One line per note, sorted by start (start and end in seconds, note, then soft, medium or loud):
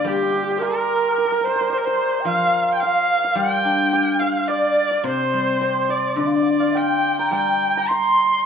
0.00 0.61 D3 medium
0.00 0.34 A#3 soft
0.00 0.62 D4 soft
0.00 0.56 C5 medium
0.00 1.69 D5 medium
0.00 1.72 F5 medium
0.04 1.71 G3 medium
0.04 0.46 G4 medium
0.04 0.64 G4 medium
0.04 0.14 G4 medium
0.14 0.22 G4 medium
0.23 0.30 G4 medium
0.30 0.36 G4 medium
0.36 0.42 G4 medium
0.43 0.50 G4 soft
0.43 0.61 G4 medium
0.50 3.64 G4 medium
0.56 1.46 A#4 medium
0.56 1.72 C5 medium
0.61 1.18 A#4 medium
0.61 1.46 A#4 medium
1.18 1.24 A#4 medium
1.25 1.31 A#4 soft
1.32 1.40 A#4 medium
1.41 1.47 A#4 soft
1.41 1.72 C5 medium
1.45 1.55 A#4 medium
1.45 1.71 C5 loud
1.55 1.60 A#4 medium
1.61 4.44 A#4 medium
1.70 1.79 C5 medium
1.70 1.83 C5 medium
1.70 1.87 C5 medium
1.70 4.15 D5 medium
1.77 1.86 A#4 medium
1.84 2.22 C5 medium
1.84 2.26 C5 medium
1.84 4.51 C5 medium
2.20 2.28 G5 medium
2.25 3.92 F3 medium
2.25 2.75 F5 loud
2.25 2.82 F5 medium
2.25 2.72 F5 medium
2.74 2.81 G5 medium
2.74 2.85 G5 medium
2.80 3.38 F5 loud
2.80 3.24 F5 medium
2.80 3.38 F5 medium
3.24 4.21 F5 medium
3.35 5.04 G3 medium
3.35 4.21 G5 loud
3.35 3.93 G5 medium
3.35 3.90 G5 medium
3.65 4.76 D4 soft
3.93 5.05 G4 soft
3.93 6.00 G5 medium
4.19 4.49 F5 medium
4.19 4.41 F5 medium
4.19 6.43 F5 medium
4.41 4.49 F5 medium
4.48 4.90 D5 medium
4.48 5.06 D5 loud
4.48 4.90 D5 medium
4.90 5.05 D5 medium
4.90 5.89 D5 medium
5.04 6.18 C3 medium
5.04 6.21 C5 medium
5.04 5.92 C5 loud
5.04 5.61 C5 medium
5.33 6.47 G3 soft
5.61 6.76 C4 soft
5.61 8.25 C5 medium
5.89 6.18 D5 medium
5.89 6.19 D5 medium
6.16 7.88 D3 soft
6.16 8.46 D5 medium
6.16 6.28 D5 medium
6.16 6.78 D5 medium
6.27 6.38 F5 medium
6.36 6.44 D5 soft
6.42 6.53 F5 medium
6.51 6.78 D5 medium
6.60 8.46 F5 medium
6.75 7.32 G5 medium
6.75 7.33 G5 loud
6.75 7.19 G5 medium
7.19 7.77 A#5 medium
7.19 7.34 A#5 medium
7.31 8.46 G3 medium
7.31 7.74 G5 medium
7.31 8.46 G5 medium
7.31 7.89 G5 loud
7.75 7.90 A#5 medium
7.75 8.46 A#5 medium
7.88 8.46 C6 loud
7.88 8.46 C6 medium